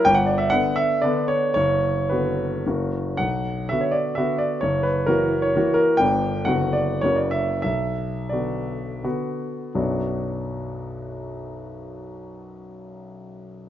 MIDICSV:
0, 0, Header, 1, 2, 480
1, 0, Start_track
1, 0, Key_signature, 2, "minor"
1, 0, Tempo, 454545
1, 54, Time_signature, 3, 2, 24, 8
1, 540, Tempo, 512821
1, 1020, Tempo, 541028
1, 2940, Tempo, 502934
1, 3900, Tempo, 451807
1, 5820, Tempo, 478088
1, 6300, Tempo, 548948
1, 6780, Tempo, 603015
1, 7260, Tempo, 708383
1, 8700, Tempo, 647948
1, 10140, Tempo, 678733
1, 11548, End_track
2, 0, Start_track
2, 0, Title_t, "Grand piano"
2, 0, Program_c, 0, 0
2, 51, Note_on_c, 0, 79, 118
2, 66, Note_on_c, 0, 31, 75
2, 154, Note_on_c, 0, 78, 84
2, 164, Note_off_c, 0, 79, 0
2, 246, Control_c, 0, 64, 127
2, 277, Note_off_c, 0, 78, 0
2, 278, Note_on_c, 0, 74, 72
2, 401, Note_on_c, 0, 76, 83
2, 405, Note_off_c, 0, 74, 0
2, 526, Note_on_c, 0, 78, 105
2, 531, Note_off_c, 0, 31, 0
2, 536, Note_off_c, 0, 76, 0
2, 549, Note_on_c, 0, 59, 55
2, 551, Control_c, 0, 64, 0
2, 552, Note_on_c, 0, 62, 56
2, 553, Note_on_c, 0, 50, 49
2, 770, Note_on_c, 0, 76, 95
2, 775, Note_off_c, 0, 78, 0
2, 987, Note_off_c, 0, 59, 0
2, 988, Note_off_c, 0, 62, 0
2, 989, Note_off_c, 0, 50, 0
2, 1012, Note_on_c, 0, 74, 88
2, 1015, Note_off_c, 0, 76, 0
2, 1030, Note_on_c, 0, 50, 62
2, 1033, Note_on_c, 0, 62, 63
2, 1035, Note_on_c, 0, 59, 62
2, 1244, Note_off_c, 0, 74, 0
2, 1247, Note_on_c, 0, 73, 84
2, 1450, Note_off_c, 0, 50, 0
2, 1451, Note_off_c, 0, 62, 0
2, 1452, Note_off_c, 0, 59, 0
2, 1466, Note_off_c, 0, 73, 0
2, 1479, Note_on_c, 0, 73, 97
2, 1498, Note_on_c, 0, 30, 62
2, 1695, Control_c, 0, 64, 127
2, 1961, Note_off_c, 0, 30, 0
2, 1966, Note_off_c, 0, 73, 0
2, 1969, Note_on_c, 0, 71, 58
2, 1985, Note_on_c, 0, 50, 44
2, 1987, Note_on_c, 0, 59, 38
2, 1991, Note_on_c, 0, 66, 45
2, 2433, Note_off_c, 0, 50, 0
2, 2434, Note_off_c, 0, 59, 0
2, 2436, Note_off_c, 0, 66, 0
2, 2460, Note_off_c, 0, 71, 0
2, 2467, Control_c, 0, 64, 0
2, 2473, Note_on_c, 0, 49, 36
2, 2477, Note_on_c, 0, 30, 54
2, 2478, Note_on_c, 0, 58, 42
2, 2485, Note_on_c, 0, 66, 39
2, 2681, Control_c, 0, 64, 127
2, 2911, Note_off_c, 0, 49, 0
2, 2914, Note_off_c, 0, 58, 0
2, 2917, Note_off_c, 0, 66, 0
2, 2927, Note_on_c, 0, 78, 88
2, 2934, Note_off_c, 0, 30, 0
2, 2946, Note_on_c, 0, 35, 56
2, 2948, Control_c, 0, 64, 0
2, 3155, Control_c, 0, 64, 127
2, 3414, Note_off_c, 0, 35, 0
2, 3418, Note_off_c, 0, 78, 0
2, 3418, Note_on_c, 0, 76, 82
2, 3440, Control_c, 0, 64, 0
2, 3441, Note_on_c, 0, 59, 38
2, 3442, Note_on_c, 0, 50, 44
2, 3446, Note_on_c, 0, 66, 43
2, 3532, Note_on_c, 0, 73, 60
2, 3543, Note_off_c, 0, 76, 0
2, 3633, Note_on_c, 0, 74, 70
2, 3659, Note_off_c, 0, 73, 0
2, 3859, Note_on_c, 0, 76, 75
2, 3870, Note_off_c, 0, 50, 0
2, 3870, Note_off_c, 0, 59, 0
2, 3871, Note_off_c, 0, 66, 0
2, 3883, Note_off_c, 0, 74, 0
2, 3884, Note_on_c, 0, 50, 47
2, 3885, Note_on_c, 0, 59, 51
2, 3886, Note_on_c, 0, 66, 51
2, 4102, Note_on_c, 0, 74, 71
2, 4123, Note_off_c, 0, 76, 0
2, 4327, Note_off_c, 0, 50, 0
2, 4328, Note_off_c, 0, 59, 0
2, 4328, Note_off_c, 0, 66, 0
2, 4340, Note_on_c, 0, 73, 81
2, 4356, Note_off_c, 0, 74, 0
2, 4362, Note_on_c, 0, 30, 59
2, 4576, Note_on_c, 0, 71, 69
2, 4582, Control_c, 0, 64, 127
2, 4591, Note_off_c, 0, 73, 0
2, 4824, Note_on_c, 0, 70, 81
2, 4833, Note_off_c, 0, 30, 0
2, 4839, Note_off_c, 0, 71, 0
2, 4842, Note_on_c, 0, 52, 47
2, 4846, Note_on_c, 0, 58, 48
2, 4853, Note_on_c, 0, 66, 51
2, 5205, Note_on_c, 0, 73, 80
2, 5214, Note_off_c, 0, 70, 0
2, 5300, Note_off_c, 0, 52, 0
2, 5302, Note_off_c, 0, 58, 0
2, 5306, Note_off_c, 0, 66, 0
2, 5352, Note_on_c, 0, 58, 58
2, 5353, Note_on_c, 0, 52, 56
2, 5359, Note_on_c, 0, 66, 61
2, 5364, Control_c, 0, 64, 0
2, 5542, Note_on_c, 0, 70, 84
2, 5574, Note_off_c, 0, 73, 0
2, 5778, Note_off_c, 0, 58, 0
2, 5779, Note_off_c, 0, 52, 0
2, 5782, Note_off_c, 0, 66, 0
2, 5789, Note_on_c, 0, 79, 100
2, 5797, Note_off_c, 0, 70, 0
2, 5811, Note_on_c, 0, 50, 47
2, 5814, Note_on_c, 0, 31, 67
2, 5816, Note_on_c, 0, 59, 47
2, 5825, Note_on_c, 0, 62, 51
2, 6001, Control_c, 0, 64, 127
2, 6256, Note_off_c, 0, 50, 0
2, 6258, Note_off_c, 0, 59, 0
2, 6263, Note_off_c, 0, 62, 0
2, 6269, Note_on_c, 0, 78, 86
2, 6283, Note_off_c, 0, 31, 0
2, 6285, Note_on_c, 0, 30, 64
2, 6285, Note_on_c, 0, 50, 47
2, 6286, Note_off_c, 0, 79, 0
2, 6299, Note_on_c, 0, 59, 46
2, 6300, Note_on_c, 0, 66, 46
2, 6307, Control_c, 0, 64, 0
2, 6518, Note_on_c, 0, 74, 71
2, 6519, Control_c, 0, 64, 127
2, 6522, Note_off_c, 0, 78, 0
2, 6737, Note_off_c, 0, 50, 0
2, 6744, Note_off_c, 0, 59, 0
2, 6744, Note_off_c, 0, 66, 0
2, 6758, Note_off_c, 0, 30, 0
2, 6768, Note_on_c, 0, 73, 85
2, 6770, Note_off_c, 0, 74, 0
2, 6783, Note_on_c, 0, 30, 58
2, 6790, Control_c, 0, 64, 0
2, 6791, Note_on_c, 0, 49, 45
2, 6793, Note_on_c, 0, 58, 46
2, 6797, Note_on_c, 0, 66, 42
2, 6884, Note_on_c, 0, 74, 59
2, 6888, Note_off_c, 0, 73, 0
2, 6973, Control_c, 0, 64, 127
2, 7004, Note_on_c, 0, 76, 77
2, 7007, Note_off_c, 0, 74, 0
2, 7233, Note_off_c, 0, 49, 0
2, 7234, Note_off_c, 0, 58, 0
2, 7237, Note_off_c, 0, 66, 0
2, 7240, Note_off_c, 0, 76, 0
2, 7247, Note_off_c, 0, 30, 0
2, 7252, Note_on_c, 0, 76, 79
2, 7267, Note_on_c, 0, 35, 52
2, 7272, Control_c, 0, 64, 0
2, 7455, Control_c, 0, 64, 127
2, 7709, Note_on_c, 0, 74, 52
2, 7716, Note_off_c, 0, 35, 0
2, 7723, Note_off_c, 0, 76, 0
2, 7723, Note_on_c, 0, 50, 33
2, 7728, Note_on_c, 0, 59, 35
2, 7733, Note_on_c, 0, 66, 43
2, 8185, Note_off_c, 0, 50, 0
2, 8187, Note_off_c, 0, 59, 0
2, 8190, Note_off_c, 0, 66, 0
2, 8205, Note_off_c, 0, 74, 0
2, 8208, Note_on_c, 0, 50, 42
2, 8218, Note_on_c, 0, 59, 43
2, 8218, Note_on_c, 0, 66, 48
2, 8228, Control_c, 0, 64, 0
2, 8671, Note_off_c, 0, 50, 0
2, 8675, Note_off_c, 0, 59, 0
2, 8675, Note_off_c, 0, 66, 0
2, 8694, Note_on_c, 0, 35, 50
2, 8696, Note_on_c, 0, 42, 42
2, 8697, Note_on_c, 0, 54, 46
2, 8697, Note_on_c, 0, 62, 41
2, 8698, Note_on_c, 0, 59, 40
2, 8704, Note_on_c, 0, 66, 41
2, 8865, Control_c, 0, 64, 127
2, 11548, Note_off_c, 0, 35, 0
2, 11548, Note_off_c, 0, 42, 0
2, 11548, Note_off_c, 0, 54, 0
2, 11548, Note_off_c, 0, 59, 0
2, 11548, Note_off_c, 0, 62, 0
2, 11548, Note_off_c, 0, 66, 0
2, 11548, End_track
0, 0, End_of_file